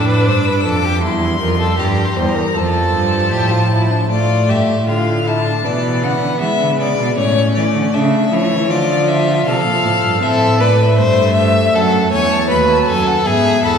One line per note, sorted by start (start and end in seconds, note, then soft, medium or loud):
0.00 0.29 A2 medium
0.00 1.02 D4 medium
0.05 0.29 B4 medium
0.05 0.15 D6 medium
0.14 0.23 E6 medium
0.22 0.31 D6 medium
0.27 0.67 G2 medium
0.27 0.46 C5 medium
0.27 0.39 E6 medium
0.37 0.46 D6 medium
0.45 0.64 B4 medium
0.45 0.54 E6 medium
0.52 0.62 D6 medium
0.61 0.70 E6 medium
0.65 1.05 F2 medium
0.65 0.86 A4 medium
0.69 1.03 D6 medium
0.85 1.02 G4 medium
1.03 1.40 E2 medium
1.03 2.57 G3 medium
1.03 1.40 E4 medium
1.03 1.81 C6 medium
1.41 1.78 F2 loud
1.41 1.60 A#4 medium
1.60 1.78 A4 medium
1.79 2.16 G2 medium
1.79 2.18 G4 medium
1.79 1.89 A#5 medium
1.87 1.97 C6 medium
1.96 2.05 A#5 medium
2.04 2.13 C6 medium
2.12 2.22 A#5 medium
2.16 2.55 E2 medium
2.16 2.36 C5 medium
2.16 2.29 C6 medium
2.27 2.58 A#5 medium
2.35 2.56 A#4 medium
2.55 2.93 F2 medium
2.55 4.09 F3 medium
2.55 3.32 A4 medium
2.55 4.10 A5 medium
2.94 3.34 G2 medium
3.32 4.09 A2 medium
3.32 3.53 G4 medium
3.52 3.70 F4 medium
3.71 3.92 E4 medium
3.90 4.10 D4 medium
4.10 4.50 A2 medium
4.10 4.84 A3 medium
4.10 4.51 F4 medium
4.10 4.51 D5 medium
4.49 4.67 G2 medium
4.49 4.87 G4 medium
4.49 4.88 E5 medium
4.68 5.63 A2 medium
4.87 5.63 D3 medium
4.87 5.25 F4 medium
4.87 5.29 F5 medium
5.26 5.47 E4 medium
5.26 5.67 A5 medium
5.45 5.66 D4 medium
5.64 6.04 B2 medium
5.64 6.39 E3 medium
5.64 7.16 B3 medium
5.64 6.05 D5 medium
6.03 6.21 C#3 medium
6.03 6.40 F#5 medium
6.22 6.29 D3 medium
6.41 6.48 E3 medium
6.41 7.18 G#3 medium
6.41 6.78 E5 medium
6.60 6.78 D3 medium
6.79 6.98 C#3 medium
6.79 7.17 D5 medium
6.98 7.17 B2 medium
7.17 7.55 A2 medium
7.17 8.70 A3 medium
7.17 7.96 C#4 medium
7.17 7.54 C#5 loud
7.55 7.64 E3 medium
7.55 7.95 D5 medium
7.75 7.83 D3 medium
7.94 8.32 C#3 medium
7.94 8.34 D4 medium
7.94 8.34 E5 medium
8.32 8.53 F3 medium
8.32 8.70 E4 medium
8.32 8.72 C#5 loud
8.52 8.72 E3 medium
8.70 9.46 D3 medium
8.70 9.45 F3 medium
8.70 9.49 F4 medium
8.70 9.10 D5 medium
9.08 9.46 E5 medium
9.46 9.65 C3 medium
9.46 10.21 F3 medium
9.46 10.23 A4 medium
9.46 10.24 F5 loud
9.66 9.73 A#2 medium
9.84 9.92 A2 medium
10.03 10.24 G2 medium
10.22 11.00 A2 medium
10.22 10.62 C4 medium
10.22 10.62 A4 loud
10.22 10.60 E5 medium
10.60 12.52 A3 medium
10.60 10.98 B4 medium
10.60 10.79 D5 medium
10.80 11.76 E5 medium
10.98 11.74 G2 medium
10.98 11.35 C5 loud
11.36 11.77 E5 loud
11.74 12.12 F#2 medium
11.74 12.12 A4 loud
11.74 12.12 F#5 medium
12.12 12.52 E2 medium
12.12 12.50 C#5 loud
12.12 12.33 G#5 medium
12.32 12.50 A5 medium
12.50 12.88 D#2 medium
12.50 13.26 F#3 medium
12.50 12.88 B4 loud
12.50 12.58 B5 medium
12.69 12.89 A5 medium
12.88 13.26 F#2 medium
12.88 13.28 A4 medium
12.88 13.08 G#5 medium
13.07 13.25 F#5 medium
13.25 13.63 G#2 medium
13.25 13.78 B3 medium
13.25 13.63 G#4 loud
13.25 13.65 E5 medium
13.64 13.78 E2 medium
13.64 13.78 A4 loud
13.64 13.78 B5 medium